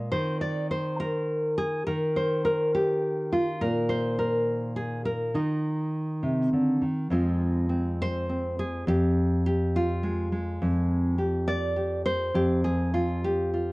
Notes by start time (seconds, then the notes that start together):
Already playing: A#2 G#3 D5
0.12 D#3 C5
0.41 D5
0.71 C5
1.00 A#4
1.58 G#4
1.86 D#3 A#4
2.16 C5
2.45 A#4
2.75 G4
3.33 F4
3.61 A#2 A#4
3.89 C5
4.19 A#4
4.76 G#4
5.06 A#4
5.35 D#3 D#4
6.23 C3
6.53 D3
6.81 D#3
7.10 F2 G#3 C4 F4
7.69 C4
8.02 C5
8.29 C4
8.59 G#4
8.87 F2 G4
9.46 G4
9.76 F4
10.03 G#3
10.32 G#3
10.62 F2
11.18 G4
11.48 D5
11.76 G4
12.06 C5
12.34 F2 G4
12.64 G#4
12.94 F4
13.24 G4
13.54 F4